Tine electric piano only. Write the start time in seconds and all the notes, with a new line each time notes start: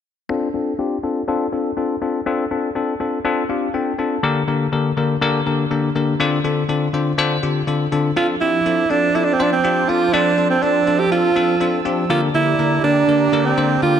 0.29 C4 D4 F4 A4
0.54 C4 D4 F4 A4
0.79 C4 D4 F4 G4
1.03 C4 D4 F4 A4
1.28 C4 D4 F4 A4
1.52 C4 D4 F4 A4
1.77 C4 D4 F4 A4
2.02 C4 D4 F4 A4
2.26 C4 D4 F4 A4
2.51 C4 D4 F4 A4
2.75 C4 D4 F4 A4
3.00 C4 D4 F4 A4
3.25 C4 D4 F4 A4
3.49 C4 D4 F4 G4 F5
3.74 C4 D4 F4 A4 G5
3.99 C4 D4 F4 A4 A5
4.23 D3 A#3 D4 G4 A#4
4.48 D3 A#3 D4 G4 A#4
4.72 D3 A#3 D4 G4 A#4
4.97 D3 A#3 D4 G4 A#4
5.22 D3 A#3 D4 G4 A#4
5.46 D3 A#3 D4 G4 A#4
5.71 D3 A#3 D4 G4 A#4
5.95 D3 A#3 D4 G4 A#4
6.20 D3 C4 D4 F4 A4
6.44 D3 C4 D4 F4 A4
6.69 D3 C4 D4 F4 A4
6.94 D3 C4 D4 F4 C5
7.18 D3 C4 D4 F4 C5
7.43 D3 C4 D4 F4 G4
7.67 D3 C4 D4 F4 A4
7.92 D3 C4 D4 F4 A4
8.17 C4 D4 F4 A4
8.41 C4 D4 F4 G4
8.66 C4 D4 F4 A4
8.90 C4 D4 F4 A4
9.15 C4 D4 F4 A4
9.39 C4 D4 F4 C5
9.64 C4 D4 F4 G4
9.89 C4 D4 F4 A4
10.13 C4 D4 F4 A4
10.38 C4 D4 F4 A4
10.62 C4 D4 F4 A4
10.87 C4 D4 F4 A4
11.12 C4 D4 F4 A4
11.36 C4 D4 F4 A4
11.60 C4 D4 F4 A4
11.85 C4 D4 F4 G4
12.10 D3 A#3 D4 G4 A#4
12.34 D3 A#3 D4 G4 A#4
12.59 D3 A#3 D4 G4 A#4
12.84 D3 A#3 D4 G4 A#4
13.08 D3 A#3 D4 G4 A#4
13.33 D3 A#3 D4 G4 A#4
13.57 D3 A#3 D4 G4 C5
13.82 D3 A#3 D4 G4 A#4